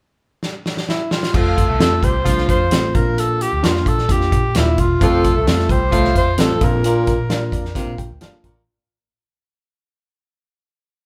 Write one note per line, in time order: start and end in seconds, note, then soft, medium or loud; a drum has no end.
0.43 snare medium
0.66 snare medium
0.77 snare medium
0.89 1.13 E4 medium
0.89 snare medium
1.11 1.37 F4 medium
1.11 snare medium
1.23 snare medium
1.34 1.64 F1 medium
1.34 1.67 F3 medium
1.34 1.67 A3 medium
1.34 1.67 C4 medium
1.34 1.68 F4 medium
1.34 1.67 F4 loud
1.34 1.81 A4 medium
1.34 kick loud
1.34 crash medium
1.58 kick medium
1.58 closed hi-hat medium
1.68 1.79 C2 medium
1.68 2.00 A3 medium
1.68 2.01 A4 medium
1.80 2.00 F2 medium
1.80 2.13 A3 medium
1.80 1.89 C4 medium
1.80 2.13 C4 medium
1.80 1.90 F4 medium
1.80 2.14 F4 medium
1.80 1.90 A4 medium
1.80 2.05 A4 medium
1.80 snare loud
1.80 closed hi-hat medium
2.02 2.23 C2 medium
2.02 2.21 G3 medium
2.02 2.21 G4 medium
2.02 2.49 C5 medium
2.02 kick medium
2.02 closed hi-hat medium
2.25 2.46 C2 medium
2.25 2.68 F3 loud
2.25 2.59 A3 medium
2.25 2.59 C4 medium
2.25 2.59 D4 medium
2.25 2.69 F4 loud
2.25 kick medium
2.25 closed hi-hat medium
2.38 snare soft
2.49 2.69 F2 medium
2.49 2.97 C5 medium
2.49 kick medium
2.49 closed hi-hat medium
2.71 2.92 A1 medium
2.71 2.95 A3 medium
2.71 2.81 C4 medium
2.71 2.95 C4 medium
2.71 2.93 F4 medium
2.71 2.81 F4 medium
2.71 2.82 A4 medium
2.71 snare loud
2.71 closed hi-hat loud
2.95 3.45 A#1 medium
2.95 3.50 A#3 medium
2.95 3.50 D4 medium
2.95 3.50 F4 medium
2.95 3.21 A#4 medium
2.95 kick loud
2.95 closed hi-hat medium
3.18 3.44 A4 medium
3.18 closed hi-hat medium
3.41 3.67 G4 medium
3.41 closed hi-hat medium
3.53 3.63 D2 medium
3.63 3.84 F2 medium
3.63 3.97 A#3 medium
3.63 3.73 D4 medium
3.63 3.97 D4 medium
3.63 3.97 F4 medium
3.63 3.73 F4 medium
3.63 3.90 F4 medium
3.63 3.73 A#4 medium
3.63 snare loud
3.63 closed hi-hat medium
3.76 snare soft
3.86 4.06 A#2 medium
3.86 4.14 A4 medium
3.86 kick medium
3.86 closed hi-hat medium
3.98 snare soft
4.09 4.29 F2 medium
4.09 4.43 A#3 medium
4.09 4.43 D4 medium
4.09 4.43 F4 medium
4.09 4.59 G4 loud
4.09 kick medium
4.09 closed hi-hat medium
4.21 snare soft
4.32 4.53 A#2 medium
4.32 kick medium
4.32 closed hi-hat medium
4.55 4.76 D#1 medium
4.55 4.89 A#3 medium
4.55 4.89 D4 medium
4.55 4.65 D4 medium
4.55 4.82 E4 medium
4.55 4.89 F4 medium
4.55 4.65 F4 medium
4.55 4.66 A#4 medium
4.55 snare loud
4.55 closed hi-hat loud
4.78 4.98 E1 medium
4.78 5.05 F4 medium
4.78 kick medium
4.78 closed hi-hat medium
5.01 5.31 F1 medium
5.01 5.34 F2 medium
5.01 5.34 F3 loud
5.01 5.07 G3 medium
5.01 5.35 C4 medium
5.01 5.35 F4 medium
5.01 5.34 F4 loud
5.01 5.48 A4 medium
5.01 kick loud
5.01 closed hi-hat medium
5.07 5.37 A3 medium
5.24 kick medium
5.24 closed hi-hat medium
5.35 5.46 C2 medium
5.35 5.67 A3 medium
5.35 5.68 A4 medium
5.47 5.67 F2 medium
5.47 5.80 A3 medium
5.47 5.80 C4 medium
5.47 5.57 C4 medium
5.47 5.80 F4 medium
5.47 5.57 F4 medium
5.47 5.73 A4 medium
5.47 5.57 A4 medium
5.47 snare loud
5.47 closed hi-hat medium
5.59 snare soft
5.69 5.90 C2 medium
5.69 5.89 G3 medium
5.69 5.88 G4 medium
5.69 6.16 C5 medium
5.69 kick medium
5.69 closed hi-hat medium
5.92 6.13 C2 medium
5.92 6.11 A2 medium
5.92 6.35 F3 loud
5.92 6.26 A3 medium
5.92 6.26 C4 medium
5.92 6.35 F4 loud
5.92 6.26 E5 medium
5.92 kick medium
5.92 closed hi-hat medium
6.04 snare soft
6.16 6.36 F2 medium
6.16 6.41 C5 medium
6.16 kick medium
6.16 closed hi-hat medium
6.38 6.59 A1 medium
6.38 6.57 F2 medium
6.38 6.61 A3 medium
6.38 6.48 C4 medium
6.38 6.62 C4 medium
6.38 6.48 F4 medium
6.38 6.60 F4 medium
6.38 6.48 A4 medium
6.38 6.65 A4 medium
6.38 snare loud
6.38 closed hi-hat loud
6.61 7.11 A#1 medium
6.61 6.80 F2 medium
6.61 7.16 A#3 medium
6.61 7.16 D4 medium
6.61 7.16 F4 medium
6.61 8.22 A#4 medium
6.61 kick medium
6.61 closed hi-hat medium
6.84 7.17 A#2 medium
6.84 closed hi-hat medium
7.07 kick medium
7.07 closed hi-hat medium
7.18 7.28 A#1 medium
7.29 7.50 A#2 loud
7.29 7.63 A#3 medium
7.29 7.63 D4 medium
7.29 7.39 F4 medium
7.29 7.63 F4 medium
7.29 7.40 A#4 medium
7.29 7.40 D5 loud
7.29 snare loud
7.29 closed hi-hat medium
7.52 7.73 F2 medium
7.52 7.74 D5 medium
7.52 kick medium
7.52 closed hi-hat medium
7.65 snare soft
7.75 7.94 C3 medium
7.75 8.09 A#3 medium
7.75 8.09 D4 medium
7.75 8.09 F4 medium
7.75 7.97 F5 medium
7.75 kick medium
7.75 closed hi-hat medium
7.87 7.97 A#2 medium
7.98 8.08 A#1 medium
7.98 8.20 G5 medium
7.98 kick medium
7.98 closed hi-hat medium
8.10 8.20 D2 medium
8.21 8.54 A#3 medium
8.21 8.54 D4 medium
8.21 8.31 F4 medium
8.21 8.54 F4 medium
8.21 8.31 A#4 medium
8.21 8.31 D5 medium
8.21 8.50 A5 medium
8.21 snare loud
8.21 closed hi-hat loud
8.44 8.64 A1 medium
8.44 8.62 A#2 medium
8.44 kick medium
8.44 closed hi-hat medium
8.52 8.66 A#5 medium